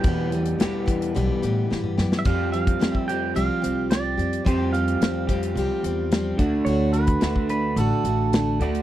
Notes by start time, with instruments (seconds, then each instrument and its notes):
Already playing: clean electric guitar E2 B2 E3 G3 B3 G4, pedal steel guitar G5
0.04 upright bass E2, steel-string acoustic guitar E2 B2 E3 G3 B3, kick, closed hi-hat
0.08 steel-string acoustic guitar G4
0.32 steel-string acoustic guitar E3 G3 B3 G4, closed hi-hat
0.46 closed hi-hat
0.58 clean electric guitar E2 B2, upright bass E2, steel-string acoustic guitar E3 G3 B3 G4, snare, closed hi-hat
0.86 steel-string acoustic guitar E3 G3 B3 G4, kick, closed hi-hat
1.02 closed hi-hat
1.15 upright bass B1, steel-string acoustic guitar E2 B2 E3 G3 B3 G4, closed hi-hat
1.42 upright bass A2, steel-string acoustic guitar E3 G3 B3 G4, closed hi-hat
1.71 upright bass G2, steel-string acoustic guitar E3 G3 B3 G4, snare
1.84 mid tom
1.98 upright bass F#2, steel-string acoustic guitar E3 G3 B3 G4, snare
2.12 snare
2.19 pedal steel guitar E5
2.25 upright bass F2, steel-string acoustic guitar F3 G3 C4 G4, pedal steel guitar F5, kick, closed hi-hat
2.52 steel-string acoustic guitar G3 C4 G4, pedal steel guitar F5, closed hi-hat
2.67 kick, closed hi-hat
2.79 upright bass F2, steel-string acoustic guitar F3 G3 C4 G4, snare, closed hi-hat
2.94 pedal steel guitar E5, kick
3.08 clean electric guitar F3, steel-string acoustic guitar G3 C4 G4, pedal steel guitar G5, closed hi-hat
3.35 upright bass C2, steel-string acoustic guitar F3 G3 C4 G4, pedal steel guitar F5, closed hi-hat
3.62 upright bass C2, steel-string acoustic guitar G3 C4 G4, closed hi-hat
3.90 steel-string acoustic guitar F3 G3 C4 G4, pedal steel guitar D5, snare, closed hi-hat
4.17 upright bass F2, steel-string acoustic guitar G3 C4 G4, closed hi-hat
4.33 closed hi-hat
4.45 upright bass F2, steel-string acoustic guitar F3 G3 C4 G4, pedal steel guitar C5, kick, closed hi-hat
4.73 steel-string acoustic guitar G3 C4 G4, pedal steel guitar F5, closed hi-hat
4.88 closed hi-hat
5.01 upright bass F2, steel-string acoustic guitar F3 G3 C4 G4, snare, closed hi-hat
5.29 clean electric guitar F3, steel-string acoustic guitar G3 C4 G4, kick, closed hi-hat
5.43 closed hi-hat
5.55 upright bass C2, steel-string acoustic guitar F3 G3 C4 G4, closed hi-hat
5.84 upright bass E2, steel-string acoustic guitar C4 G4, closed hi-hat
5.88 steel-string acoustic guitar G3
6.11 steel-string acoustic guitar F3 G3 C4 G4, snare, closed hi-hat
6.37 upright bass D2, clean electric guitar D3, steel-string acoustic guitar D4 F#4, kick, closed hi-hat
6.41 steel-string acoustic guitar A3
6.65 upright bass D2, steel-string acoustic guitar D3 A3 D4, pedal steel guitar C#5, closed hi-hat
6.69 steel-string acoustic guitar F#4
6.93 steel-string acoustic guitar D4 F#4, pedal steel guitar B4, closed hi-hat
6.97 steel-string acoustic guitar A3
7.07 kick, closed hi-hat
7.21 upright bass D2, steel-string acoustic guitar D3 A3 D4 F#4, snare, closed hi-hat
7.36 kick
7.49 steel-string acoustic guitar A3 D4 F#4, pedal steel guitar B4, closed hi-hat
7.76 upright bass A1, steel-string acoustic guitar D3 A3 D4 F#4, pedal steel guitar A4, closed hi-hat
8.04 upright bass A1, steel-string acoustic guitar D4 F#4, closed hi-hat
8.09 steel-string acoustic guitar A3
8.32 steel-string acoustic guitar D3 A3 D4 F#4, snare, closed hi-hat
8.60 upright bass D2, clean electric guitar D3, steel-string acoustic guitar D4 F#4, pedal steel guitar D5, closed hi-hat
8.64 steel-string acoustic guitar A3
8.75 closed hi-hat